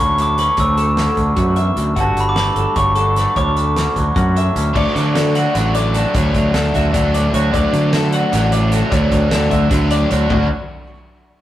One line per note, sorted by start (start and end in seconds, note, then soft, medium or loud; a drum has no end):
0.00 0.47 D2 medium
0.00 0.58 D2 medium
0.00 0.98 D3 medium
0.00 0.20 F#3 medium
0.00 0.39 C#4 medium
0.00 0.18 C#5 medium
0.00 0.21 C#6 medium
0.18 0.58 A2 medium
0.18 1.18 F#3 medium
0.18 0.38 A4 medium
0.18 0.41 D6 medium
0.18 closed hi-hat medium
0.38 0.57 C#4 medium
0.38 0.58 B4 medium
0.38 0.60 C#6 medium
0.38 closed hi-hat medium
0.57 1.07 D2 medium
0.57 1.37 D2 medium
0.57 0.78 C#5 medium
0.57 1.74 E6 medium
0.57 kick medium
0.57 closed hi-hat medium
0.78 1.18 A4 medium
0.78 closed hi-hat medium
0.97 1.97 D3 medium
0.97 1.96 C#4 medium
0.97 snare medium
0.97 closed hi-hat medium
1.17 1.34 D2 medium
1.17 1.98 F#3 medium
1.17 kick medium
1.17 closed hi-hat medium
1.36 1.57 D2 medium
1.36 1.70 F#2 medium
1.36 1.57 F#4 medium
1.36 kick loud
1.36 closed hi-hat medium
1.56 1.77 E2 medium
1.56 1.97 E5 medium
1.56 closed hi-hat medium
1.76 1.93 D2 medium
1.76 1.97 F#2 medium
1.76 closed hi-hat medium
1.96 2.13 G1 loud
1.96 3.34 G2 medium
1.96 2.36 D3 medium
1.96 2.58 F#3 medium
1.96 2.38 A3 soft
1.96 2.36 F#4 medium
1.96 kick medium
1.96 closed hi-hat medium
2.01 5.36 F#4 medium
2.01 2.09 A5 medium
2.15 2.48 G1 medium
2.15 closed hi-hat medium
2.20 2.29 B5 medium
2.29 2.38 D6 medium
2.36 2.96 D3 medium
2.36 2.78 A3 medium
2.36 2.55 B4 medium
2.36 2.78 B5 medium
2.36 snare loud
2.36 closed hi-hat medium
2.56 2.64 G1 medium
2.56 2.98 F#3 medium
2.56 2.76 A4 medium
2.56 closed hi-hat medium
2.76 3.25 G1 medium
2.76 3.18 A3 medium
2.76 2.95 C#5 medium
2.76 3.14 C#6 medium
2.76 kick loud
2.76 closed hi-hat medium
2.96 3.34 D3 medium
2.96 3.96 F#3 medium
2.96 3.16 A4 medium
2.96 closed hi-hat medium
3.16 3.77 A3 medium
3.16 3.36 B4 medium
3.16 snare soft
3.16 closed hi-hat medium
3.36 3.85 D2 medium
3.36 4.75 D2 medium
3.36 3.56 C#5 loud
3.36 4.52 D6 medium
3.36 kick medium
3.36 closed hi-hat medium
3.56 3.96 A4 medium
3.56 closed hi-hat medium
3.77 5.15 D3 medium
3.77 4.16 C#4 medium
3.77 snare medium
3.77 closed hi-hat medium
3.96 4.12 D2 medium
3.96 4.35 F#3 medium
3.96 kick medium
3.96 closed hi-hat medium
4.16 4.48 F#2 medium
4.16 4.55 C#4 medium
4.16 4.36 F#4 medium
4.16 kick loud
4.16 closed hi-hat medium
4.36 4.75 A2 medium
4.36 4.95 F#3 medium
4.36 4.76 E5 medium
4.36 closed hi-hat medium
4.56 4.72 D2 medium
4.56 4.73 C#4 medium
4.56 closed hi-hat medium
4.74 4.84 D2 medium
4.74 6.16 D2 medium
4.74 5.54 D3 medium
4.74 5.55 F#3 medium
4.74 5.56 A3 medium
4.74 5.57 D4 medium
4.74 5.15 D5 medium
4.74 kick medium
4.74 crash loud
4.95 5.44 D3 medium
4.95 5.57 F#3 medium
4.95 snare soft
4.95 closed hi-hat medium
5.15 6.54 D3 medium
5.15 5.35 A4 medium
5.15 snare loud
5.15 closed hi-hat medium
5.35 5.97 F#4 medium
5.35 5.74 F#5 medium
5.35 snare soft
5.35 closed hi-hat medium
5.54 6.03 A1 medium
5.54 6.13 D3 medium
5.54 6.15 F#3 medium
5.54 6.36 F#3 medium
5.54 6.16 A3 medium
5.54 6.17 D4 medium
5.54 closed hi-hat medium
5.75 6.15 A2 medium
5.75 5.94 D5 medium
5.75 closed hi-hat medium
5.94 6.75 F#4 medium
5.94 6.15 A4 medium
5.94 closed hi-hat medium
6.14 6.31 D2 loud
6.14 7.53 D2 medium
6.14 6.96 D3 loud
6.14 6.95 F#3 medium
6.14 6.94 A3 medium
6.14 6.92 D4 medium
6.14 6.54 C#5 medium
6.14 kick medium
6.14 closed hi-hat loud
6.34 6.50 D2 medium
6.34 6.96 F#3 medium
6.34 kick medium
6.34 closed hi-hat medium
6.54 6.70 D2 medium
6.54 7.93 D3 medium
6.54 6.74 A4 medium
6.54 snare medium
6.54 closed hi-hat medium
6.74 6.90 D2 loud
6.74 7.34 F#4 medium
6.74 7.14 E5 medium
6.74 kick medium
6.74 snare soft
6.74 closed hi-hat medium
6.93 7.26 D2 medium
6.93 7.52 D3 medium
6.93 7.53 F#3 medium
6.93 7.74 F#3 medium
6.93 7.55 A3 medium
6.93 7.56 D4 medium
6.93 kick loud
6.93 closed hi-hat loud
7.14 7.54 A2 medium
7.14 7.34 D5 medium
7.14 closed hi-hat medium
7.34 7.50 D2 medium
7.34 8.14 F#4 medium
7.34 7.53 C#5 medium
7.34 closed hi-hat medium
7.53 8.92 D2 medium
7.53 7.62 D2 medium
7.53 8.31 D3 medium
7.53 8.33 F#3 loud
7.53 8.34 A3 medium
7.53 8.36 D4 medium
7.53 7.93 D5 medium
7.53 kick loud
7.53 closed hi-hat medium
7.73 8.21 D3 medium
7.73 8.34 F#3 medium
7.73 closed hi-hat medium
7.93 9.32 D3 medium
7.93 8.13 A4 medium
7.93 snare medium
7.93 closed hi-hat medium
8.12 8.73 F#4 medium
8.12 8.52 F#5 medium
8.12 closed hi-hat medium
8.32 8.81 A1 medium
8.32 8.90 D3 medium
8.32 8.92 F#3 medium
8.32 9.12 F#3 medium
8.32 8.93 A3 medium
8.32 snare soft
8.32 closed hi-hat medium
8.36 8.94 D4 medium
8.52 8.92 A2 medium
8.52 8.72 D5 medium
8.52 closed hi-hat medium
8.71 9.53 F#4 medium
8.71 8.91 A4 medium
8.71 closed hi-hat medium
8.91 9.08 D2 loud
8.91 10.31 D2 medium
8.91 9.69 D3 loud
8.91 9.70 F#3 loud
8.91 9.70 A3 medium
8.91 9.68 D4 medium
8.91 9.31 C#5 loud
8.91 kick loud
8.91 closed hi-hat medium
9.12 9.28 D2 medium
9.12 9.72 F#3 medium
9.12 kick medium
9.12 closed hi-hat medium
9.31 9.48 D2 medium
9.31 10.31 D3 medium
9.31 9.51 A4 medium
9.31 snare loud
9.31 closed hi-hat medium
9.51 9.68 D2 medium
9.51 10.12 F#4 medium
9.51 9.91 E5 medium
9.51 kick medium
9.51 closed hi-hat medium
9.70 10.03 D2 medium
9.70 10.29 F#3 medium
9.70 10.32 F#3 medium
9.70 10.29 A3 medium
9.70 10.29 D4 loud
9.70 kick loud
9.70 closed hi-hat medium
9.74 10.29 D3 medium
9.91 10.32 A2 medium
9.91 10.10 D5 medium
9.91 closed hi-hat medium
10.10 10.27 D2 loud
10.10 10.29 F#4 medium
10.10 10.31 C#5 medium
10.10 closed hi-hat medium
10.30 10.49 D2 medium
10.30 10.46 D3 medium
10.30 10.49 D3 medium
10.30 10.46 F#3 medium
10.30 10.50 F#3 medium
10.30 10.46 A3 loud
10.30 10.47 D4 loud
10.30 10.47 F#4 loud
10.30 10.50 D5 medium
10.30 kick loud
10.30 floor tom medium
10.34 10.50 C#4 medium
10.34 10.50 F#4 soft